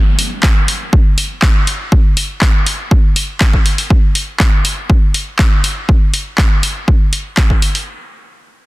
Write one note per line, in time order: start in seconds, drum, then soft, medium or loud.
0.19 open hi-hat loud
0.43 kick loud
0.43 clap loud
0.68 open hi-hat loud
0.93 kick loud
1.18 open hi-hat loud
1.42 kick loud
1.42 clap loud
1.67 open hi-hat medium
1.92 kick loud
2.17 open hi-hat loud
2.41 kick loud
2.41 clap loud
2.67 open hi-hat loud
2.91 kick loud
3.16 open hi-hat loud
3.41 kick loud
3.41 clap loud
3.53 kick medium
3.66 open hi-hat loud
3.78 open hi-hat medium
3.90 kick loud
4.15 open hi-hat loud
4.40 kick loud
4.40 clap loud
4.65 open hi-hat loud
4.90 kick loud
5.14 open hi-hat loud
5.39 kick loud
5.39 clap loud
5.64 open hi-hat loud
5.89 kick loud
6.14 open hi-hat loud
6.38 kick loud
6.38 clap loud
6.63 open hi-hat loud
6.88 kick loud
7.13 open hi-hat loud
7.37 kick loud
7.37 clap loud
7.50 kick medium
7.62 open hi-hat loud
7.75 open hi-hat medium